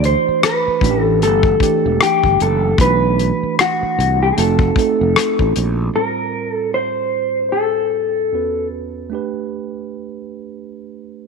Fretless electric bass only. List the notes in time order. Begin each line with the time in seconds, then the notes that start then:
Already playing: D2
0.29 muted fretless electric bass stroke
0.68 muted fretless electric bass stroke
0.83 A1
1.23 G1
1.86 E1
2.25 G1
2.41 F#1
2.80 B1
3.43 muted fretless electric bass stroke
3.83 muted fretless electric bass stroke
3.99 C2
4.38 F1
5.01 F1
5.40 A1
5.57 A#1